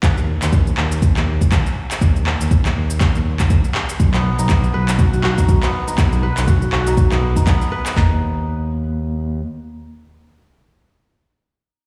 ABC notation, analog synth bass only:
X:1
M:4/4
L:1/16
Q:"Swing 16ths" 1/4=121
K:Cblyd
V:1 name="Analog synth bass" clef=bass
E,,2 z E,,2 z E,,2 z E,,2 z E,, z3 | E,,2 z E,,2 z E,,2 z E,,2 z E,, z3 | =B,,,2 z B,,,2 z B,,,2 z B,,,2 z B,,, z3 | =B,,,2 z B,,,2 z B,,,2 z B,,,2 z B,,, z3 |
E,,12 z4 | z16 |]